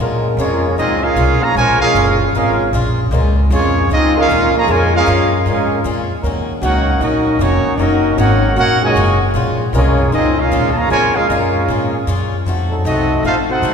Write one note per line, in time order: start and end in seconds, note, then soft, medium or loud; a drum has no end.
0.00 0.26 A#2 medium
0.00 0.36 A#2 medium
0.00 0.26 G#3 medium
0.00 1.09 G#3 loud
0.00 1.09 C#4 medium
0.00 0.27 C#4 medium
0.00 1.09 F4 medium
0.00 0.27 F4 medium
0.00 1.09 A#4 loud
0.37 0.76 F2 loud
0.37 0.65 A#2 medium
0.37 0.74 F3 medium
0.37 0.75 G#3 medium
0.37 0.66 G#3 medium
0.37 0.76 A#3 medium
0.37 0.75 C#4 medium
0.37 0.66 C#4 medium
0.37 0.76 F4 medium
0.37 0.66 F4 medium
0.37 0.76 G#4 medium
0.37 0.76 C#5 medium
0.76 1.15 C#2 medium
0.76 1.04 A#2 soft
0.76 1.05 G#3 medium
0.76 1.01 C4 medium
0.76 1.05 C#4 medium
0.76 1.00 D#4 medium
0.76 1.01 F4 medium
0.76 1.01 G#4 medium
0.76 1.02 D#5 loud
0.81 1.06 F4 medium
1.01 1.41 G#3 loud
1.01 1.41 C#4 medium
1.01 1.42 C#4 medium
1.01 1.41 F4 medium
1.01 1.41 G#4 medium
1.01 1.42 A#4 medium
1.01 1.41 F5 loud
1.16 1.40 C2 loud
1.16 1.43 A#2 medium
1.16 1.43 G#3 medium
1.16 1.44 C#4 medium
1.16 1.44 F4 medium
1.41 1.51 C#3 medium
1.41 1.51 F3 medium
1.41 1.55 A#3 medium
1.41 1.56 G#4 medium
1.41 1.55 C#5 medium
1.41 1.56 F5 loud
1.41 1.56 A#5 loud
1.41 muted upright bass stroke soft
1.52 1.79 A#1 loud
1.52 1.77 C#3 medium
1.52 1.78 F3 loud
1.52 1.78 G#3 medium
1.52 1.80 C#5 loud
1.52 1.79 G#5 loud
1.56 1.83 A#2 medium
1.56 1.83 G#3 medium
1.56 1.84 C#4 medium
1.56 1.80 F4 loud
1.56 1.84 F4 medium
1.56 1.80 A#4 medium
1.79 2.16 G#3 loud
1.79 2.32 G#3 medium
1.79 2.17 C#4 loud
1.79 2.18 C#4 medium
1.79 2.31 C#4 medium
1.79 2.17 F4 medium
1.79 2.32 F4 medium
1.79 2.18 G#4 medium
1.79 2.18 A#4 medium
1.79 2.31 A#4 loud
1.79 2.18 F5 loud
1.79 muted upright bass stroke soft
1.94 2.32 F#1 loud
1.94 2.22 A#2 medium
1.94 2.22 G#3 medium
1.94 2.22 C#4 medium
1.94 2.22 F4 medium
2.33 2.71 G#1 medium
2.33 2.61 A#2 medium
2.33 2.70 G#3 medium
2.33 2.61 G#3 medium
2.33 2.70 C#4 medium
2.33 2.71 C#4 medium
2.33 2.62 C#4 medium
2.33 2.70 F4 medium
2.33 2.62 F4 medium
2.33 2.71 G#4 medium
2.33 2.71 A#4 medium
2.33 2.71 F5 medium
2.73 3.11 A#1 loud
2.73 3.00 A#2 medium
2.73 3.00 G#3 medium
2.73 3.00 C#4 medium
2.73 3.01 F4 medium
3.11 3.49 C#2 loud
3.11 3.38 A#2 medium
3.11 3.29 G#3 medium
3.11 3.39 G#3 medium
3.11 3.29 C#4 medium
3.11 3.39 C#4 medium
3.11 3.29 F4 medium
3.11 3.40 F4 medium
3.11 3.29 A#4 medium
3.50 3.88 F2 loud
3.50 3.78 A#2 medium
3.50 3.88 F3 medium
3.50 3.78 G#3 medium
3.50 3.88 G#3 medium
3.50 3.89 A#3 medium
3.50 3.88 C#4 medium
3.50 3.78 C#4 medium
3.50 3.78 F4 medium
3.50 3.89 F4 medium
3.50 3.89 G#4 medium
3.50 3.89 C#5 medium
3.89 4.27 C#2 medium
3.89 4.17 A#2 soft
3.89 4.17 G#3 medium
3.89 4.17 C#4 medium
3.89 4.14 D#4 medium
3.89 4.18 F4 medium
3.89 4.15 F4 loud
3.93 4.15 C4 medium
3.93 4.15 G#4 medium
3.93 4.15 D#5 loud
4.16 4.65 G#3 loud
4.16 4.53 G#3 medium
4.16 4.65 C#4 medium
4.16 4.53 C#4 medium
4.16 4.54 C#4 medium
4.16 4.65 F4 loud
4.16 4.53 F4 medium
4.16 4.54 G#4 medium
4.16 4.65 A#4 loud
4.16 4.54 F5 loud
4.20 4.54 A#4 medium
4.28 4.52 D#2 medium
4.28 4.56 A#2 medium
4.28 4.56 G#3 medium
4.28 4.56 C#4 medium
4.28 4.57 F4 medium
4.54 4.67 C#3 medium
4.54 4.67 F3 medium
4.54 4.67 A#3 medium
4.54 muted upright bass stroke soft
4.58 4.69 G#4 loud
4.58 4.69 C#5 medium
4.58 4.69 F5 medium
4.58 4.69 A#5 loud
4.67 5.05 F2 loud
4.67 4.95 A#2 medium
4.67 4.93 C#3 medium
4.67 4.93 F3 medium
4.67 4.92 G#3 loud
4.67 4.95 G#3 medium
4.67 5.77 G#3 loud
4.67 5.77 C#4 medium
4.67 4.95 C#4 medium
4.67 5.77 F4 medium
4.67 4.96 F4 medium
4.67 5.77 A#4 loud
4.67 4.95 G#5 loud
4.71 4.95 F4 loud
4.71 4.95 A#4 loud
4.71 4.95 C#5 loud
4.93 5.29 G#3 loud
4.93 5.29 C#4 medium
4.93 5.31 C#4 medium
4.93 5.29 F4 medium
4.93 5.31 G#4 medium
4.93 5.31 A#4 medium
4.93 5.31 F5 loud
5.06 5.45 F#2 loud
5.06 5.33 A#2 medium
5.06 5.34 G#3 medium
5.06 5.34 C#4 medium
5.06 5.34 F4 medium
5.45 5.83 G#2 medium
5.45 5.72 A#2 soft
5.45 5.82 G#3 medium
5.45 5.73 G#3 medium
5.45 5.82 C#4 medium
5.45 5.73 C#4 medium
5.45 5.82 F4 medium
5.45 5.74 F4 medium
5.50 5.84 C#4 medium
5.50 5.84 G#4 medium
5.50 5.84 A#4 medium
5.50 5.84 F5 medium
5.84 6.22 F2 loud
5.84 6.11 A#2 medium
5.84 6.12 G#3 medium
5.84 6.12 C#4 medium
5.84 6.12 F4 medium
6.22 6.61 D#2 medium
6.22 6.51 D#3 medium
6.22 7.32 F#3 medium
6.22 6.51 A#3 medium
6.22 7.32 C#4 medium
6.22 6.51 C#4 medium
6.22 7.32 D#4 medium
6.22 7.32 A#4 medium
6.26 6.52 F#4 medium
6.61 6.99 C#2 loud
6.61 6.89 D#3 medium
6.61 6.99 A#3 medium
6.61 6.90 A#3 medium
6.61 6.98 C#4 medium
6.61 6.90 C#4 medium
6.61 7.00 D#4 medium
6.61 6.98 F#4 medium
6.61 6.90 F#4 medium
6.61 7.00 A#4 medium
6.61 7.00 C#5 medium
6.61 7.00 F#5 medium
7.00 7.38 A#1 medium
7.00 7.28 D#3 medium
7.00 7.38 F#3 medium
7.00 7.38 A#3 medium
7.00 7.28 A#3 soft
7.00 7.29 C#4 medium
7.00 7.41 C#4 medium
7.00 7.40 D#4 medium
7.00 7.29 F#4 medium
7.00 7.41 F#4 medium
7.00 7.41 A#4 medium
7.00 7.41 D#5 loud
7.39 7.63 F1 loud
7.39 7.67 D#3 medium
7.39 7.74 F#3 medium
7.39 7.74 A#3 medium
7.39 7.67 A#3 medium
7.39 7.75 A#3 medium
7.39 7.74 C#4 medium
7.39 7.68 C#4 medium
7.39 7.75 D#4 medium
7.39 7.68 F#4 medium
7.39 7.75 F#4 medium
7.39 7.76 C#5 medium
7.65 muted upright bass stroke soft
7.77 8.16 F#1 medium
7.77 8.06 D#3 soft
7.77 8.17 F#3 medium
7.77 7.96 F#3 medium
7.77 8.14 A#3 medium
7.77 8.06 A#3 medium
7.77 7.96 C#4 medium
7.77 8.07 C#4 medium
7.77 8.17 D#4 medium
7.77 7.96 D#4 medium
7.77 7.96 A#4 medium
7.77 7.81 D5 medium
7.81 8.19 C#4 medium
7.81 8.19 F#4 loud
7.81 8.07 F#4 medium
7.81 8.19 A#4 medium
7.81 8.19 D#5 loud
8.15 8.56 G#1 loud
8.15 8.45 D#3 medium
8.15 8.53 A#3 medium
8.15 8.45 A#3 medium
8.15 8.53 C#4 loud
8.15 8.45 C#4 medium
8.15 8.53 F#4 medium
8.20 8.55 D#4 medium
8.20 8.46 F#4 medium
8.20 8.55 A#4 medium
8.20 8.55 C#5 medium
8.20 8.55 F#5 loud
8.55 8.94 A#1 medium
8.55 8.83 D#3 medium
8.55 8.80 A#3 loud
8.55 8.84 A#3 medium
8.55 8.80 C#4 loud
8.55 8.84 C#4 medium
8.55 8.82 D#4 medium
8.55 8.80 F#4 loud
8.55 8.85 F#4 medium
8.55 8.82 A#4 loud
8.55 8.82 C#5 loud
8.55 8.82 F#5 loud
8.81 9.18 A#2 loud
8.81 9.18 C#3 medium
8.81 9.33 F#3 medium
8.81 9.18 G#3 loud
8.81 9.32 C#4 medium
8.81 9.32 D#4 medium
8.81 9.20 F#4 medium
8.81 9.32 A#4 loud
8.85 9.20 C#5 loud
8.85 9.20 D#5 medium
8.85 9.20 G#5 medium
8.95 9.33 F#1 loud
8.95 9.23 D#3 medium
8.95 9.23 A#3 medium
8.95 9.23 C#4 medium
8.95 9.23 F#4 medium
9.34 9.72 A#1 medium
9.34 9.61 A#2 medium
9.34 9.62 G#3 medium
9.34 9.62 C#4 medium
9.34 9.62 F4 medium
9.73 10.11 C2 loud
9.73 10.01 A#2 medium
9.73 10.10 F3 medium
9.73 10.33 G#3 loud
9.73 10.10 G#3 medium
9.73 10.01 G#3 medium
9.73 10.33 C#4 medium
9.73 10.10 C#4 medium
9.73 10.01 C#4 medium
9.73 10.33 F4 medium
9.73 10.01 F4 medium
9.73 10.12 F4 medium
9.73 10.33 A#4 loud
9.77 10.12 A#3 medium
9.77 10.12 G#4 medium
9.77 10.12 C#5 medium
10.12 10.50 C#2 medium
10.12 10.39 A#2 medium
10.12 10.40 G#3 medium
10.12 10.37 C4 medium
10.12 10.40 C#4 medium
10.12 10.36 D#4 medium
10.12 10.37 F4 medium
10.12 10.40 F4 medium
10.12 10.37 G#4 medium
10.12 10.37 D#5 loud
10.36 10.70 G#3 medium
10.36 10.69 C#4 medium
10.36 10.71 C#4 medium
10.36 10.69 F4 medium
10.36 10.71 G#4 loud
10.36 10.71 A#4 medium
10.36 10.71 F5 loud
10.51 10.89 D#2 medium
10.51 10.78 A#2 medium
10.51 10.79 G#3 medium
10.51 10.79 C#4 medium
10.51 10.79 F4 medium
10.73 10.88 C#3 medium
10.73 10.87 F3 medium
10.73 10.89 A#3 medium
10.73 10.90 F5 loud
10.73 10.78 A5 medium
10.77 10.90 G#4 medium
10.77 10.90 C#5 medium
10.77 10.90 A#5 loud
10.88 11.14 F2 loud
10.88 11.17 A#2 medium
10.88 11.13 C#3 medium
10.88 11.13 F3 medium
10.88 11.13 G#3 medium
10.88 11.17 G#3 medium
10.88 11.18 C#4 medium
10.88 11.14 F4 loud
10.88 11.14 A#4 loud
10.88 11.14 C#5 loud
10.88 11.14 G#5 loud
10.93 11.18 F4 medium
11.14 11.65 G#3 medium
11.14 11.28 G#3 medium
11.14 11.65 C#4 medium
11.14 11.28 C#4 medium
11.14 11.29 C#4 medium
11.14 11.65 F4 medium
11.14 11.28 F4 medium
11.14 11.29 G#4 medium
11.14 11.65 A#4 loud
11.14 11.30 A#4 medium
11.14 11.29 F5 loud
11.14 muted upright bass stroke soft
11.29 11.67 F#2 loud
11.29 11.56 A#2 medium
11.29 12.03 G#3 medium
11.29 11.56 G#3 medium
11.29 12.03 C#4 medium
11.29 12.04 C#4 medium
11.29 11.57 C#4 medium
11.29 12.03 F4 medium
11.29 11.57 F4 medium
11.29 12.04 G#4 medium
11.29 12.04 A#4 medium
11.29 12.04 F5 medium
11.68 12.06 G#2 medium
11.68 11.95 A#2 medium
11.68 11.96 G#3 medium
11.68 11.96 C#4 medium
11.68 11.96 F4 medium
12.07 12.31 F#2 medium
12.07 12.34 A#2 medium
12.07 12.34 G#3 medium
12.07 12.34 C#4 medium
12.07 12.35 F4 medium
12.32 muted upright bass stroke soft
12.46 12.84 F2 medium
12.46 12.73 F3 medium
12.46 12.73 A3 medium
12.46 12.74 D#4 medium
12.46 12.74 F#4 medium
12.70 13.21 F3 medium
12.70 13.21 F#3 medium
12.70 13.21 D#4 medium
12.70 13.21 A4 medium
12.85 13.23 C2 loud
12.85 13.12 F3 medium
12.85 13.21 A3 medium
12.85 13.12 A3 medium
12.85 13.21 C4 medium
12.85 13.22 C4 medium
12.85 13.21 D#4 medium
12.85 13.12 D#4 medium
12.85 13.13 F#4 medium
12.85 13.22 F#4 medium
12.85 13.22 A4 medium
12.85 13.22 D#5 medium
13.23 13.61 A1 medium
13.23 13.51 F3 medium
13.23 13.35 A3 medium
13.23 13.51 A3 medium
13.23 13.35 C4 medium
13.23 13.51 D#4 medium
13.23 13.37 D#4 medium
13.23 13.35 F4 medium
13.23 13.52 F#4 medium
13.23 13.37 A4 medium
13.23 13.37 C5 medium
13.23 13.37 F5 loud
13.49 13.74 C4 medium
13.49 13.74 D#4 medium
13.49 13.74 F#4 medium
13.49 13.74 A4 medium
13.49 13.74 C5 medium
13.49 13.74 F#5 medium
13.62 13.74 C#2 loud
13.62 13.74 F3 medium
13.62 13.74 A3 medium
13.62 13.74 D#4 medium
13.62 13.74 F#4 medium